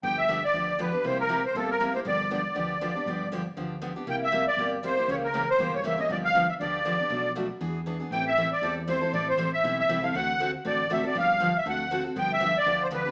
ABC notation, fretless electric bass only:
X:1
M:4/4
L:1/8
Q:"Swing" 1/4=237
K:Gmix
V:1 name="Fretless electric bass" clef=bass
G,,,4 D,,4 | C,,4 G,,,4 | G,,,4 D,,4 | G,,,4 D,,4 |
C,,4 G,,,4 | ^C,,4 G,,,4 | G,,,4 D,,4 | B,,,4 E,,4 |
A,,,4 E,,4 | A,,,2 A,,,2 B,,,2 C,,2 | D,,4 A,,,4 | G,,,4 D,,4 |
G,,,4 D,,4 |]